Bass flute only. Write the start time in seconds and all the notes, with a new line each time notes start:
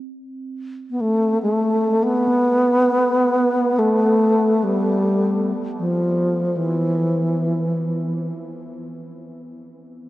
0.91 B3
1.01 A3
1.42 A3
2.03 B3
3.79 A3
4.64 G3
5.79 F3
6.57 E3